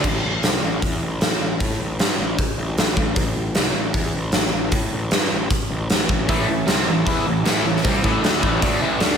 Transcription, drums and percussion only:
0.04 kick, crash
0.43 snare, open hi-hat
0.82 kick, open hi-hat
1.21 snare, open hi-hat
1.60 kick, open hi-hat
1.99 snare, open hi-hat
2.39 kick, open hi-hat
2.78 snare, open hi-hat
2.97 kick
3.16 kick, open hi-hat
3.55 snare, open hi-hat
3.94 kick, open hi-hat
4.32 snare, open hi-hat
4.72 kick, open hi-hat
5.11 snare, open hi-hat
5.50 kick, open hi-hat
5.90 snare, open hi-hat
6.09 kick
6.29 kick, open hi-hat
6.68 snare, open hi-hat
7.07 kick, open hi-hat
7.45 snare, open hi-hat
7.76 snare
7.85 kick, open hi-hat
8.04 kick
8.24 snare, open hi-hat
8.43 kick
8.62 kick, open hi-hat
9.00 snare, open hi-hat

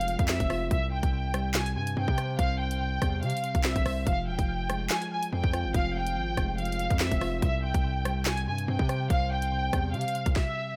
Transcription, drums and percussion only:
0.01 closed hi-hat
0.08 closed hi-hat
0.19 kick, closed hi-hat
0.28 snare, clap
0.40 kick, closed hi-hat
0.50 cross-stick, open hi-hat
0.71 kick, closed hi-hat
1.03 kick, closed hi-hat
1.34 cross-stick, closed hi-hat
1.54 snare, clap, closed hi-hat
1.66 closed hi-hat
1.87 closed hi-hat
2.08 kick
2.18 cross-stick, closed hi-hat
2.39 kick, closed hi-hat
2.71 closed hi-hat
3.02 kick, cross-stick, closed hi-hat
3.23 closed hi-hat
3.30 closed hi-hat
3.37 closed hi-hat
3.44 closed hi-hat
3.55 kick, closed hi-hat
3.64 snare, clap
3.76 kick, closed hi-hat
3.86 cross-stick, open hi-hat
4.07 kick, closed hi-hat
4.39 kick, closed hi-hat
4.70 cross-stick, closed hi-hat
4.90 snare, clap, closed hi-hat
5.02 closed hi-hat
5.23 closed hi-hat
5.44 kick
5.53 cross-stick, closed hi-hat
5.74 kick, closed hi-hat
6.07 closed hi-hat
6.37 kick, cross-stick, closed hi-hat
6.58 closed hi-hat
6.65 closed hi-hat
6.72 closed hi-hat
6.79 closed hi-hat
6.91 kick, closed hi-hat
6.99 snare, clap
7.11 kick, closed hi-hat
7.21 cross-stick, open hi-hat
7.42 kick, closed hi-hat
7.74 kick, closed hi-hat
8.05 cross-stick, closed hi-hat
8.25 snare, clap, closed hi-hat
8.37 closed hi-hat
8.58 closed hi-hat
8.79 kick
8.89 cross-stick, closed hi-hat
9.10 kick, closed hi-hat
9.42 closed hi-hat
9.73 kick, cross-stick, closed hi-hat
9.94 closed hi-hat
10.01 closed hi-hat
10.08 closed hi-hat
10.15 closed hi-hat
10.26 kick, closed hi-hat
10.36 kick, snare

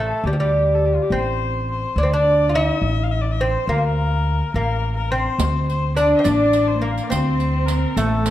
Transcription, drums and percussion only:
5.39 riq
5.70 riq
5.97 riq
6.25 riq
6.53 riq
6.98 riq
7.12 riq
7.40 riq
7.68 riq
7.97 riq
8.26 riq

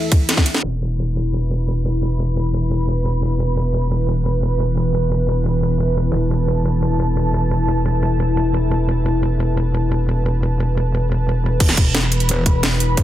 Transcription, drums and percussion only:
0.12 kick, closed hi-hat, ride
0.29 snare, closed hi-hat, ride
0.37 kick, snare
0.46 closed hi-hat, ride
0.54 snare
0.63 crash
11.60 kick, closed hi-hat, crash
11.69 snare, closed hi-hat
11.77 kick, closed hi-hat
11.95 snare, closed hi-hat
12.03 snare
12.12 closed hi-hat
12.20 closed hi-hat
12.29 closed hi-hat
12.46 kick, closed hi-hat
12.63 snare, closed hi-hat
12.80 closed hi-hat
12.97 kick, closed hi-hat

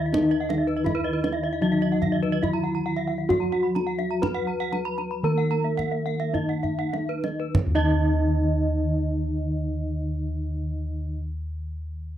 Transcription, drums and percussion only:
0.14 kendang high, kendang low
0.32 kendang slap
0.50 kendang high
0.68 kendang slap
0.86 kendang high, kendang low
1.24 kendang high
2.02 kendang slap, kendang low
2.23 kendang slap
2.43 kendang slap, kendang low
3.30 kendang high, kendang low
3.52 kendang slap
3.76 kendang slap, kendang high
3.99 kendang slap
4.23 kendang high, kendang low
4.73 kendang slap, kendang high
4.98 kendang slap
5.52 kendang slap
5.79 kendang slap, kendang low
6.06 kendang slap
6.35 kendang slap, kendang low
6.64 kendang low
6.94 kendang high
7.24 kendang high
7.55 kendang low

